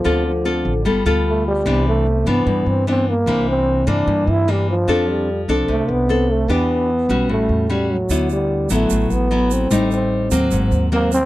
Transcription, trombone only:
0.00 0.26 F3 medium
0.27 0.82 F3 medium
1.29 1.46 A3 medium
1.48 1.84 G3 medium
1.88 2.30 A3 medium
2.29 2.70 B3 medium
2.69 2.88 C4 medium
2.89 3.10 C4 medium
3.09 3.48 A#3 loud
3.49 3.90 C4 medium
3.89 4.32 D4 medium
4.30 4.52 E4 loud
4.51 4.69 G3 medium
4.70 5.12 F3 medium
5.10 5.42 G3 medium
5.70 5.92 A3 medium
5.91 6.33 B3 loud
6.32 6.53 A3 medium
6.51 7.30 B3 loud
7.31 7.72 A3 medium
7.71 7.93 G3 medium
7.91 8.31 F#3 medium
8.32 8.68 G3 medium
8.73 9.14 A3 medium
9.12 9.54 B3 medium
9.53 9.92 C4 medium
9.93 10.48 C4 medium
10.94 11.11 A#3 medium
11.14 11.25 C4 loud

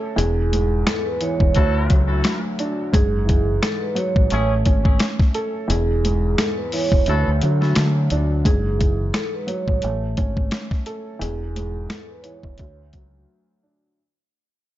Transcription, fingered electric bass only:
0.18 0.83 E1 loud
1.41 1.54 E1 medium
1.57 1.87 D2 loud
1.91 2.22 C#2 medium
2.94 3.59 F#1 loud
4.16 4.30 A1 medium
4.32 4.63 A1 loud
4.66 4.97 G#1 medium
5.70 6.35 E1 loud
6.92 7.06 E1 medium
7.08 7.25 D2 loud
7.28 7.41 D2 loud
7.43 7.73 D3 loud
7.77 8.08 D3 loud
8.12 8.42 D2 medium
8.46 9.10 F#1 loud
9.68 9.82 A1 medium
9.84 10.15 A1 loud
10.18 10.49 G#1 medium
11.22 11.86 E1 loud
12.44 12.57 E1 medium
12.60 12.91 D2 loud
12.94 13.25 C#2 medium

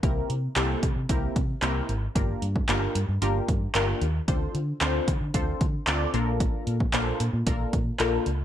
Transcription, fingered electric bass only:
0.03 0.20 C2 loud
0.30 0.47 C3 loud
0.56 0.73 C2 loud
0.83 0.91 C3 loud
0.96 1.05 C3 loud
1.09 1.27 C2 loud
1.36 1.53 C3 loud
1.62 1.80 C2 loud
1.89 2.06 G#1 medium
2.16 2.33 G1 loud
2.42 2.59 G2 loud
2.69 2.86 G1 loud
2.95 3.04 G2 loud
3.09 3.17 G2 loud
3.22 3.39 G1 loud
3.48 3.66 G2 loud
3.75 3.92 G1 loud
4.01 4.19 D#2 medium
4.28 4.45 D2 loud
4.55 4.72 D3 medium
4.81 4.98 D2 loud
5.08 5.16 D3 loud
5.21 5.30 D3 loud
5.34 5.52 D2 loud
5.61 5.78 D3 loud
5.87 6.04 D2 loud
6.14 6.48 A#1 loud
6.67 6.84 A#2 loud
6.93 7.11 A#1 loud
7.20 7.29 A#2 loud
7.33 7.42 A#2 loud
7.47 7.64 A#1 loud
7.73 7.90 A#2 loud
8.00 8.17 A#1 loud
8.26 8.43 C#2 medium

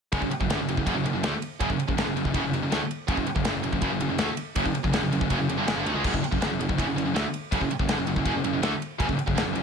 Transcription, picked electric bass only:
0.12 0.21 F#1 medium
0.22 0.30 F#1 medium
0.31 muted picked electric bass stroke soft
0.40 0.49 F#1 medium
0.50 0.58 G1 loud
0.59 0.68 F#1 medium
0.68 0.77 F#1 medium
0.77 0.86 F#1 medium
0.86 0.95 F#1 medium
0.95 1.04 F#1 medium
1.05 1.14 F#1 medium
1.14 1.23 F#1 medium
1.23 1.32 D2 medium
1.60 1.69 F#1 medium
1.70 1.78 F#1 medium
1.78 muted picked electric bass stroke soft
1.89 1.96 F#1 medium
1.96 2.04 G1 loud
2.05 2.14 F#1 medium
2.15 2.24 F#1 medium
2.25 2.34 F#1 medium
2.34 2.42 F#1 medium
2.42 2.52 F#1 medium
2.52 2.61 F#1 medium
2.62 2.70 F#1 medium
2.71 2.80 D2 medium
3.08 3.17 F#1 medium
3.18 3.26 F#1 medium
3.27 muted picked electric bass stroke soft
3.36 3.45 F#1 medium
3.46 3.54 G1 loud
3.55 3.63 F#1 medium
3.64 3.72 F#1 medium
3.72 3.81 F#1 medium
3.82 3.91 F#1 loud
3.92 4.01 F#1 medium
4.01 4.10 F#1 medium
4.11 4.19 F#1 medium
4.20 4.28 D2 medium
4.56 4.65 F#1 loud
4.66 4.75 F#1 medium
4.75 muted picked electric bass stroke soft
4.84 4.92 F#1 medium
4.93 5.01 G1 medium
5.02 5.11 F#1 medium
5.11 5.20 F#1 medium
5.21 5.30 F#1 medium
5.30 5.39 F#1 medium
5.39 5.48 F#1 medium
5.49 5.57 F#1 medium
5.57 5.67 G1 medium
5.68 5.75 F#1 medium
5.76 5.85 G1 medium
5.86 5.94 D2 medium
5.95 6.04 C#2 medium
6.04 6.13 F#1 medium
6.14 6.23 F#1 medium
6.23 muted picked electric bass stroke soft
6.32 6.41 F#1 medium
6.42 6.50 G1 loud
6.50 6.59 F#1 medium
6.59 6.68 F#1 medium
6.69 6.78 F#1 medium
6.79 6.86 F#1 loud
6.86 6.95 F#1 medium
6.95 7.04 F#1 medium
7.05 7.14 F#1 medium
7.14 7.24 D2 medium
7.52 7.60 F#1 medium
7.61 7.70 F#1 medium
7.70 muted picked electric bass stroke soft
7.79 7.88 F#1 medium
7.88 7.98 G1 loud
7.98 8.06 F#1 medium
8.07 8.16 F#1 medium
8.16 8.25 F#1 medium
8.25 8.34 F#1 medium
8.35 8.43 F#1 medium
8.44 8.53 F#1 medium
8.54 8.62 F#1 medium
8.62 8.72 D2 medium
9.00 9.08 F#1 medium
9.09 9.17 F#1 medium
9.18 muted picked electric bass stroke soft
9.27 9.36 F#1 medium
9.37 9.45 G1 medium
9.45 9.55 F#1 medium
9.55 9.63 F#1 medium

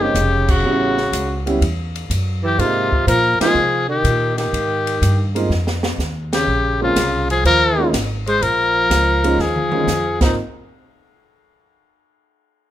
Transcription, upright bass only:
0.00 0.14 G1 medium
0.15 0.62 F1 medium
0.63 1.11 A1 medium
1.12 1.60 C#2 medium
1.61 2.09 E2 medium
2.10 2.57 F#2 loud
2.58 3.06 G#2 medium
3.07 3.38 A#2 medium
3.41 muted upright bass stroke soft
3.55 4.03 C3 medium
4.04 4.52 A#2 medium
4.53 5.00 G#2 medium
5.02 5.49 G2 medium
5.50 5.97 F2 medium
5.98 6.46 D#2 medium
6.47 6.95 A#1 medium
6.96 7.43 C2 medium
7.44 7.92 D#2 medium
7.93 8.40 G#1 medium
8.41 8.89 A#1 medium
8.90 9.37 C#2 medium
9.38 9.86 D#2 medium
9.87 10.20 F2 medium
10.21 10.35 G#1 medium

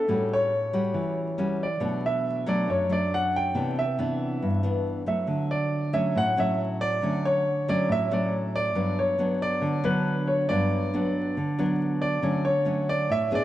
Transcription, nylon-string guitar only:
0.08 0.93 A2 medium
0.08 0.52 G3 medium
0.08 0.52 C#4 soft
0.08 0.52 F#4 medium
0.73 1.35 G3 medium
0.73 1.35 C#4 medium
0.73 1.36 F#4 medium
0.94 1.80 E3 medium
1.38 1.67 G3 medium
1.38 1.67 C#4 medium
1.38 1.67 F#4 medium
1.80 2.66 B2 medium
1.80 2.43 F#3 medium
1.80 2.43 A3 medium
1.80 2.43 D4 medium
2.46 2.87 F#3 medium
2.46 2.87 A3 medium
2.46 2.87 D4 medium
2.68 3.53 F#2 medium
2.90 3.52 F#3 medium
2.90 3.52 A3 medium
2.90 3.52 D4 medium
3.55 4.40 C3 medium
3.55 3.83 E3 medium
3.55 3.83 B3 medium
3.55 3.83 D4 medium
3.99 4.61 E3 medium
3.99 4.61 B3 medium
3.99 4.61 D4 medium
4.42 5.27 G2 medium
4.63 5.04 E3 medium
4.63 5.04 B3 medium
4.63 5.04 D4 medium
5.06 5.90 F#3 medium
5.06 5.91 A3 medium
5.27 6.13 D3 medium
5.93 6.34 F#3 medium
5.93 6.34 A3 medium
5.93 6.34 C#4 medium
6.15 7.00 A2 medium
6.37 6.99 F#3 medium
6.37 6.99 A3 medium
6.37 6.99 C#4 medium
7.02 7.87 D3 medium
7.02 7.46 F#3 medium
7.02 7.46 A3 medium
7.02 7.46 C#4 medium
7.68 8.08 F#3 medium
7.68 8.08 A3 medium
7.68 8.08 C#4 medium
7.89 8.74 A2 medium
8.11 8.73 F#3 medium
8.11 8.73 A3 medium
8.11 8.73 C#4 medium
8.75 9.60 G2 medium
8.75 9.16 F#3 medium
8.75 9.16 B3 medium
8.75 9.16 D4 medium
9.18 9.81 F#3 medium
9.18 9.81 B3 medium
9.18 9.81 D4 medium
9.61 10.47 D3 medium
9.84 10.46 F#3 medium
9.84 10.46 B3 medium
9.84 10.46 D4 medium
10.50 11.34 G2 medium
10.50 10.90 F#3 soft
10.50 10.90 B3 medium
10.50 10.90 D4 medium
10.94 11.37 F#3 medium
10.94 11.37 B3 medium
10.94 11.37 D4 medium
11.37 12.21 D3 medium
11.59 12.20 F#3 medium
11.59 12.20 B3 medium
11.59 12.20 D4 medium
12.22 13.08 D3 medium
12.22 12.51 F#3 soft
12.22 12.51 A3 medium
12.22 12.51 C#4 medium
12.65 13.09 F#3 medium
12.65 13.10 A3 medium
12.65 13.10 C#4 medium
13.09 13.44 A2 medium
13.31 13.44 B3 medium
13.31 13.44 D4 medium
13.31 13.44 G#4 medium

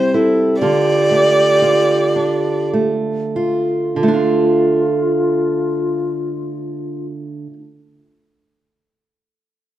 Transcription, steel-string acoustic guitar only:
0.00 0.61 C3 medium
0.00 0.70 G3 soft
0.00 0.70 C4 soft
0.00 0.13 E4 medium
0.14 0.60 E4 soft
0.62 3.96 D3 medium
0.62 1.62 F4 soft
1.11 2.73 A3 soft
1.62 3.35 F4 soft
2.16 4.08 D4 soft
2.73 4.03 A3 soft
3.36 4.13 F4 soft
3.96 7.46 D3 medium
4.03 7.53 A3 medium
4.08 7.58 D4 medium
4.14 7.64 F4 medium

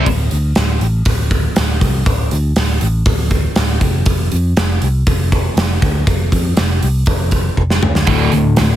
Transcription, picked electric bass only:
0.06 0.27 D1 medium
0.32 0.52 D2 medium
0.56 0.76 D1 medium
0.81 1.01 A1 medium
1.06 1.47 D1 medium
1.57 1.77 D1 medium
1.81 2.02 C2 medium
2.07 2.27 D1 medium
2.32 2.52 D2 medium
2.56 2.77 D1 medium
2.82 3.02 A1 medium
3.06 3.47 D1 medium
3.56 3.77 D1 medium
3.81 4.02 F1 medium
4.06 4.27 F1 medium
4.32 4.53 F2 medium
4.57 4.77 F1 medium
4.82 5.02 C2 medium
5.07 5.48 F1 medium
5.56 5.77 F1 medium
5.82 6.03 D2 medium
6.07 6.28 F1 medium
6.33 6.53 F2 medium
6.58 6.78 F1 medium
6.83 7.03 C2 medium
7.58 7.78 F1 medium
7.82 8.03 D2 medium
8.07 8.28 D1 medium
8.32 8.53 D2 medium
8.59 8.76 D1 medium

